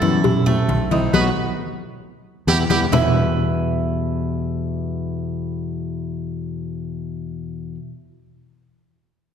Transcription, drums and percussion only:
0.02 cowbell, high conga
0.24 cowbell, high conga, low conga
0.47 high conga, low conga
0.68 cowbell, high conga
0.91 cowbell, high conga
1.13 cowbell, high conga
2.47 cowbell, high conga
2.70 cowbell, high conga
2.93 low bongo, low conga

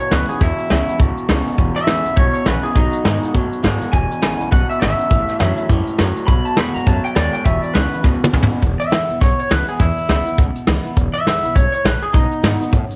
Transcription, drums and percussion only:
0.11 snare, closed hi-hat
0.29 closed hi-hat
0.41 kick, snare, closed hi-hat
0.58 closed hi-hat
0.70 snare, closed hi-hat
0.88 closed hi-hat
0.99 kick, closed hi-hat
1.17 closed hi-hat
1.29 snare, closed hi-hat
1.46 closed hi-hat
1.58 kick, closed hi-hat
1.76 snare, closed hi-hat
1.87 snare, closed hi-hat
2.05 closed hi-hat
2.17 kick, closed hi-hat
2.34 closed hi-hat
2.46 snare, closed hi-hat
2.64 closed hi-hat
2.75 kick, snare, closed hi-hat
2.93 closed hi-hat
3.05 snare, closed hi-hat
3.23 closed hi-hat
3.35 kick, closed hi-hat
3.52 closed hi-hat
3.64 kick, snare, closed hi-hat
3.81 closed hi-hat
3.93 kick, closed hi-hat
4.11 closed hi-hat
4.22 snare, closed hi-hat
4.41 closed hi-hat
4.52 kick, closed hi-hat
4.70 closed hi-hat
4.82 snare, closed hi-hat
4.99 closed hi-hat
5.11 kick, closed hi-hat
5.29 snare, closed hi-hat
5.40 snare, closed hi-hat
5.57 closed hi-hat
5.69 kick, closed hi-hat
5.87 closed hi-hat
5.98 snare, closed hi-hat
6.16 closed hi-hat
6.28 kick, snare, closed hi-hat
6.45 closed hi-hat
6.57 snare, closed hi-hat
6.75 closed hi-hat
6.87 kick, closed hi-hat
7.05 closed hi-hat
7.16 snare, closed hi-hat
7.34 closed hi-hat
7.45 kick, closed hi-hat
7.63 closed hi-hat
7.75 snare, closed hi-hat
7.92 closed hi-hat
8.04 kick, snare
8.24 high tom
8.33 kick, mid tom
8.43 mid tom
8.62 kick, closed hi-hat
8.80 closed hi-hat
8.92 snare, closed hi-hat
9.09 closed hi-hat
9.21 kick, snare, closed hi-hat
9.39 closed hi-hat
9.51 snare, closed hi-hat
9.68 closed hi-hat
9.80 kick, snare, closed hi-hat
9.97 closed hi-hat
10.09 snare, closed hi-hat
10.27 closed hi-hat
10.38 kick, snare, closed hi-hat
10.56 closed hi-hat
10.67 snare, closed hi-hat
10.85 closed hi-hat
10.97 kick, closed hi-hat
11.14 closed hi-hat
11.27 snare, closed hi-hat
11.44 closed hi-hat
11.56 kick, closed hi-hat
11.73 closed hi-hat
11.85 snare, closed hi-hat
12.03 closed hi-hat
12.14 kick, snare, closed hi-hat
12.32 closed hi-hat
12.44 snare, closed hi-hat
12.61 closed hi-hat
12.73 kick, closed hi-hat
12.90 closed hi-hat

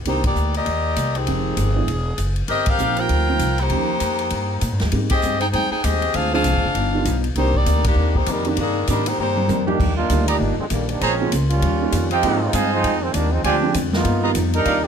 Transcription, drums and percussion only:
0.05 kick, ride
0.24 kick, ride
0.36 hi-hat pedal
0.54 ride
0.66 kick, ride
0.96 kick, hi-hat pedal, ride
1.15 ride
1.27 kick, ride
1.57 kick, hi-hat pedal, ride
1.88 kick, ride
2.18 kick, hi-hat pedal, ride
2.36 ride
2.48 kick, ride
2.66 kick, ride
2.78 hi-hat pedal
2.96 ride
3.09 kick, ride
3.39 kick, hi-hat pedal, ride
3.58 ride
3.70 kick, ride
4.00 kick, hi-hat pedal, ride
4.19 ride
4.30 kick, ride
4.61 kick, hi-hat pedal, ride
4.79 snare, ride
4.92 kick, ride
5.09 kick, ride
5.22 hi-hat pedal
5.40 ride
5.53 kick, ride
5.84 kick, hi-hat pedal, ride
6.02 ride
6.14 kick, ride
6.44 kick, hi-hat pedal, ride
6.75 kick, ride
7.05 kick, hi-hat pedal, ride
7.24 ride
7.35 kick, ride
7.54 kick
7.66 kick, hi-hat pedal, ride
7.84 kick, ride
8.15 kick
8.26 kick, hi-hat pedal, ride
8.45 ride
8.57 kick, ride
8.87 kick, hi-hat pedal, ride
9.06 ride
9.37 high tom
9.48 hi-hat pedal, high tom
9.68 floor tom
9.80 kick, crash
10.10 kick, hi-hat pedal, ride
10.28 ride
10.40 kick
10.70 kick, hi-hat pedal, ride
10.89 ride
11.01 kick, ride
11.32 kick, hi-hat pedal, ride
11.50 ride
11.62 kick, ride
11.92 kick, hi-hat pedal, ride
12.11 ride
12.23 kick, ride
12.53 kick, hi-hat pedal, ride
12.84 kick, ride
13.14 kick, hi-hat pedal, ride
13.44 kick, ride
13.74 kick, hi-hat pedal, ride
13.93 snare
14.05 kick, ride
14.35 kick, hi-hat pedal, ride
14.53 ride
14.65 kick, ride

